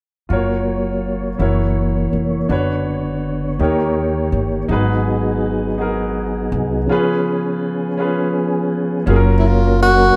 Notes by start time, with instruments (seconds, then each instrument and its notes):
0.29 upright bass F#1, tonewheel organ F#3 A#3 C#5, grand piano F4 F#4 A#4
0.33 grand piano C#5
1.39 upright bass F#1, tonewheel organ E3 A#3, grand piano E4 F#4 A#4 C#5
2.13 upright bass F1
2.49 upright bass F#1, tonewheel organ D3 B3, grand piano D4 F#4 B4 C#5
3.59 upright bass D#2, tonewheel organ D#3 A#3 G4, grand piano D#3 D#4 G4 A#4 C#5
4.32 upright bass G1
4.68 upright bass G#1, grand piano G#2 D#4 F#4 G#4, tonewheel organ F#3 B3 D#4 G#4
4.73 grand piano B4
5.78 grand piano D#4 F#4 G#4 A#4
6.52 upright bass C2
6.87 grand piano C#3 C#4 F4, tonewheel organ F3 C#4
6.91 grand piano G#4 B4
7.97 grand piano C#4 F4 G#4 B4
9.06 upright bass F#1, grand piano F#3 C#4 F4 G#4, tonewheel organ F#3 A#3 C#4 A#4
9.16 grand piano A#4
9.39 tenor saxophone E4
9.47 tenor saxophone F4
9.82 tenor saxophone F#4